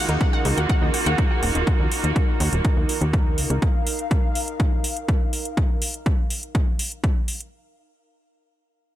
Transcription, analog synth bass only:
0, 0, Header, 1, 2, 480
1, 0, Start_track
1, 0, Key_signature, -6, "minor"
1, 0, Tempo, 487805
1, 1642, Time_signature, 4, 2, 24, 8
1, 8812, End_track
2, 0, Start_track
2, 0, Title_t, "Analog synth bass"
2, 0, Program_c, 0, 38
2, 84, Note_on_c, 0, 39, 76
2, 175, Note_off_c, 0, 39, 0
2, 444, Note_on_c, 0, 37, 98
2, 537, Note_off_c, 0, 37, 0
2, 565, Note_on_c, 0, 39, 81
2, 656, Note_off_c, 0, 39, 0
2, 805, Note_on_c, 0, 39, 77
2, 895, Note_off_c, 0, 39, 0
2, 1045, Note_on_c, 0, 39, 84
2, 1136, Note_off_c, 0, 39, 0
2, 1403, Note_on_c, 0, 27, 93
2, 1497, Note_off_c, 0, 27, 0
2, 1525, Note_on_c, 0, 27, 77
2, 1616, Note_off_c, 0, 27, 0
2, 1766, Note_on_c, 0, 39, 73
2, 1856, Note_off_c, 0, 39, 0
2, 2006, Note_on_c, 0, 39, 75
2, 2096, Note_off_c, 0, 39, 0
2, 2363, Note_on_c, 0, 39, 92
2, 2457, Note_off_c, 0, 39, 0
2, 2485, Note_on_c, 0, 27, 81
2, 2576, Note_off_c, 0, 27, 0
2, 2725, Note_on_c, 0, 39, 71
2, 2816, Note_off_c, 0, 39, 0
2, 2965, Note_on_c, 0, 39, 76
2, 3322, Note_on_c, 0, 37, 97
2, 3337, Note_off_c, 0, 39, 0
2, 3416, Note_off_c, 0, 37, 0
2, 3445, Note_on_c, 0, 37, 77
2, 3535, Note_off_c, 0, 37, 0
2, 8812, End_track
0, 0, End_of_file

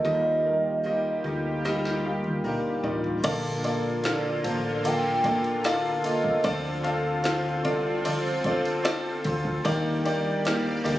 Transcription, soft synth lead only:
0, 0, Header, 1, 2, 480
1, 0, Start_track
1, 0, Key_signature, -2, "major"
1, 0, Tempo, 800000
1, 28, Time_signature, 4, 2, 24, 8
1, 6593, End_track
2, 0, Start_track
2, 0, Title_t, "Soft synth lead"
2, 0, Program_c, 0, 80
2, 0, Note_on_c, 0, 75, 88
2, 1327, Note_off_c, 0, 75, 0
2, 2191, Note_on_c, 0, 74, 92
2, 2413, Note_off_c, 0, 74, 0
2, 2420, Note_on_c, 0, 74, 110
2, 2907, Note_on_c, 0, 79, 114
2, 2916, Note_off_c, 0, 74, 0
2, 3393, Note_on_c, 0, 77, 103
2, 3402, Note_off_c, 0, 79, 0
2, 3629, Note_on_c, 0, 75, 94
2, 3638, Note_off_c, 0, 77, 0
2, 3868, Note_off_c, 0, 75, 0
2, 3875, Note_on_c, 0, 74, 104
2, 4117, Note_on_c, 0, 77, 104
2, 4126, Note_off_c, 0, 74, 0
2, 4595, Note_on_c, 0, 74, 90
2, 4604, Note_off_c, 0, 77, 0
2, 4838, Note_on_c, 0, 72, 87
2, 4847, Note_off_c, 0, 74, 0
2, 5073, Note_off_c, 0, 72, 0
2, 5076, Note_on_c, 0, 72, 81
2, 5528, Note_off_c, 0, 72, 0
2, 6037, Note_on_c, 0, 74, 114
2, 6489, Note_off_c, 0, 74, 0
2, 6593, End_track
0, 0, End_of_file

